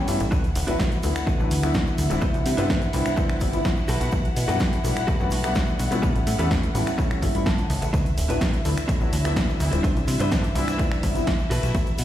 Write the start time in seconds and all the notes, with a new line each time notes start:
Already playing: E4 C#5 E5
0.08 G2 G3 A3 B3 C#4 E4, open hi-hat, shaker
0.19 A1, muted clean electric guitar stroke, closed hi-hat, shaker
0.31 D2 D4 E4 F#4 B4 F#5, kick, shaker
0.44 closed hi-hat, shaker
0.55 D1, muted clean electric guitar stroke, open hi-hat, shaker
0.67 A1 F#3 A3 B3 D4 E4 F#4 B4, closed hi-hat, shaker
0.79 kick, snare, shaker
0.92 closed hi-hat, shaker
1.03 D2 F#3 A3 B3 D4 E4, open hi-hat, shaker
1.16 finger snap, closed hi-hat, shaker
1.27 A1 D4 E4 F#4 B4, kick, shaker
1.39 A1 F#3 A3 B3 D4 E4, shaker
1.51 D2, open hi-hat, shaker
1.63 F#3 A3 B3 D4 E4, finger snap, closed hi-hat, shaker
1.74 kick, snare, shaker
1.87 shaker
1.98 D2, open hi-hat, shaker
2.10 D1 G3 C4 D4 E4, muted clean electric guitar stroke, closed hi-hat, shaker
2.21 C2 D4 E4 B4 C5, kick, shaker
2.34 C2, closed hi-hat, shaker
2.46 C3, muted clean electric guitar stroke, open hi-hat, shaker
2.57 G2 G3 B3 C4 D4 E4 B4 C5, closed hi-hat, shaker
2.70 kick, snare, shaker
2.82 closed hi-hat, shaker
2.93 C2 G3 B3 C4 D4 E4, open hi-hat, shaker
3.06 finger snap, closed hi-hat, shaker
3.17 G3 B3 C4 D4 E4 B4 C5, kick, shaker
3.29 G1, finger snap, shaker
3.40 G1 G3 B3 C4 D4 E4, kick, open hi-hat, shaker
3.53 G3 B3 C4 D4 E4, closed hi-hat, shaker
3.65 kick, snare, shaker
3.77 shaker
3.88 B1 F#4 G4 A4 B4, open hi-hat, shaker
4.01 B1, closed hi-hat, shaker
4.12 B1, kick, shaker
4.24 closed hi-hat, shaker
4.36 B2, muted clean electric guitar stroke, open hi-hat, shaker
4.48 F#2 G3 A3 B3 D4 F#4 G4 A4 B4, closed hi-hat, shaker
4.60 kick, snare, shaker
4.73 closed hi-hat, shaker
4.84 B1 G3 A3 B3 D4 F#4, open hi-hat, shaker
4.97 finger snap, closed hi-hat, shaker
5.07 F#2 F#4 G4 A4 B4, kick, shaker
5.19 F#2 G3 A3 B3 D4 F#4, shaker
5.31 B1, open hi-hat, shaker
5.44 G3 A3 B3 D4 F#5, finger snap, closed hi-hat, shaker
5.55 kick, snare, shaker
5.67 shaker
5.79 B1, open hi-hat, shaker
5.91 B2 G3 A3 B3 C#4 E4, muted clean electric guitar stroke, closed hi-hat, shaker
6.02 A1 C#4 G4 A4 B4, kick, shaker
6.16 A1, closed hi-hat, shaker
6.26 A2, muted clean electric guitar stroke, open hi-hat, shaker
6.39 E2 G3 A3 B3 C#4 E4 G4 A4 B4, closed hi-hat, shaker
6.51 kick, snare, shaker
6.63 closed hi-hat, shaker
6.75 A1 G3 A3 B3 C#4 E4, open hi-hat, shaker
6.87 finger snap, closed hi-hat, shaker
6.98 G3 A3 B3 C#4 E4 G4 A4 C#5, kick, shaker
7.11 G1, finger snap, shaker
7.22 G1 G3 A3 B3 C#4 E4 C#5, kick, open hi-hat, shaker
7.34 G3 A3 B3 C#4 E4 E5, closed hi-hat, shaker
7.46 A5, kick, snare, shaker
7.58 closed hi-hat, shaker
7.70 C#2, open hi-hat, shaker
7.82 A1, muted clean electric guitar stroke, closed hi-hat, shaker
7.93 D2 D4 E4 F#4 B4 E5, kick, ride, shaker
8.06 closed hi-hat, shaker
8.17 D1, muted clean electric guitar stroke, open hi-hat, shaker
8.29 A1 F#3 A3 B3 D4 E4 F#4 B4, closed hi-hat, shaker
8.41 kick, snare, ride, shaker
8.54 closed hi-hat, shaker
8.65 D2 F#3 A3 B3 D4 E4, open hi-hat, shaker
8.77 finger snap, closed hi-hat, shaker
8.88 A1 D4 E4 F#4 C#5, kick, ride, shaker
9.00 A1 F#3 A3 B3 D4 E4, shaker
9.13 D2, open hi-hat, shaker
9.24 F#3 A3 B3 D4 E4, finger snap, closed hi-hat, shaker
9.36 kick, snare, ride, shaker
9.49 shaker
9.60 D2 E3 E4, open hi-hat, shaker
9.72 D1 G3 C4 D4 E4, muted clean electric guitar stroke, closed hi-hat, shaker
9.83 D4 E4 B4 C5, kick, ride, shaker
9.97 C2, closed hi-hat, shaker
10.07 C3, muted clean electric guitar stroke, open hi-hat, shaker
10.20 G2 G3 B3 C4 D4 E4 B4 C5, closed hi-hat, shaker
10.32 D3 D4, kick, snare, ride, shaker
10.44 closed hi-hat, shaker
10.55 C2 E3 G3 B3 C4 D4 E4, open hi-hat, shaker
10.68 finger snap, closed hi-hat, shaker
10.78 G3 B3 C4 D4 E4 B4 D5, kick, ride, shaker
10.92 G1, finger snap, shaker
11.03 G1 G3 B3 C4 D4 E4, kick, open hi-hat, shaker
11.15 G3 B3 C4 D4 E4, closed hi-hat, shaker
11.27 kick, snare, ride, shaker
11.39 shaker
11.50 B1 F#4 G4 A4 B4, open hi-hat, shaker
11.63 B1, closed hi-hat, shaker
11.75 B1, kick, ride, shaker
11.86 closed hi-hat, shaker
11.98 B2, muted clean electric guitar stroke, open hi-hat, shaker